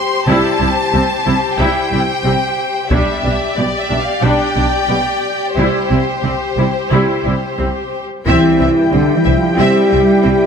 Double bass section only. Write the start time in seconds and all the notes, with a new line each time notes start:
0.28 C2
0.60 C2
0.93 C2
1.26 C2
1.59 C2
1.92 C2
2.25 C2
2.91 B1
3.24 B1
3.57 B1
3.90 B1
4.23 B1
4.57 B1
4.90 B1
5.57 C2
5.91 C2
6.25 C2
6.58 C2
6.91 C2
7.25 C2
7.59 C2
8.27 C2
8.60 C2
8.93 C2
9.26 C2
9.59 C2
9.92 C2
10.24 C2